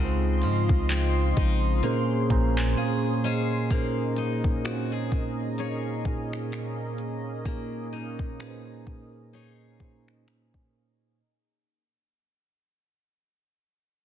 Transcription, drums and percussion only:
0.42 closed hi-hat
0.69 kick
0.90 clap, closed hi-hat
1.37 kick, closed hi-hat
1.83 closed hi-hat
2.30 kick, closed hi-hat
2.58 clap
3.71 kick, closed hi-hat
4.17 closed hi-hat
4.44 kick
4.65 finger snap, closed hi-hat
5.12 kick, closed hi-hat
5.58 closed hi-hat
6.05 kick, closed hi-hat
6.33 finger snap
6.52 finger snap, closed hi-hat
6.98 closed hi-hat
7.46 kick
8.19 kick
8.40 finger snap
8.87 kick
9.80 kick
10.08 finger snap
10.28 finger snap
10.54 kick

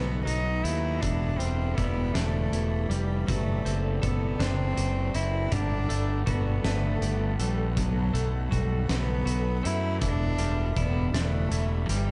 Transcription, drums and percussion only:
0.27 closed hi-hat
0.65 closed hi-hat
1.03 kick, closed hi-hat
1.40 closed hi-hat
1.78 kick, closed hi-hat
2.15 snare, closed hi-hat
2.53 closed hi-hat
2.91 closed hi-hat
3.28 kick, closed hi-hat
3.66 closed hi-hat
4.03 kick, closed hi-hat
4.40 snare, closed hi-hat
4.77 closed hi-hat
5.15 closed hi-hat
5.52 kick, closed hi-hat
5.90 closed hi-hat
6.27 kick, closed hi-hat
6.65 snare, closed hi-hat
7.02 closed hi-hat
7.40 closed hi-hat
7.77 kick, closed hi-hat
8.15 closed hi-hat
8.52 kick, closed hi-hat
8.89 snare, closed hi-hat
9.27 closed hi-hat
9.65 closed hi-hat
10.01 kick, closed hi-hat
10.38 closed hi-hat
10.76 kick, closed hi-hat
11.14 snare, closed hi-hat
11.52 closed hi-hat
11.89 closed hi-hat

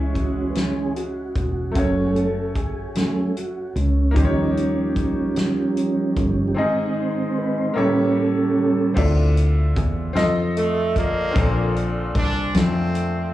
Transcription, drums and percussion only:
0.15 kick, closed hi-hat
0.55 snare, closed hi-hat
0.96 closed hi-hat
1.36 kick, closed hi-hat
1.75 kick, closed hi-hat
2.16 closed hi-hat
2.56 kick, closed hi-hat
2.95 snare, closed hi-hat
3.37 closed hi-hat
3.76 closed hi-hat
4.16 kick, closed hi-hat
4.57 closed hi-hat
4.96 kick, closed hi-hat
5.36 snare, closed hi-hat
5.77 closed hi-hat
6.17 kick, closed hi-hat
8.97 kick, crash
9.37 closed hi-hat
9.76 kick, closed hi-hat
10.16 snare, closed hi-hat
10.57 closed hi-hat
10.96 kick, closed hi-hat
11.36 kick, closed hi-hat
11.76 closed hi-hat
12.15 kick, closed hi-hat
12.55 snare, closed hi-hat
12.95 closed hi-hat

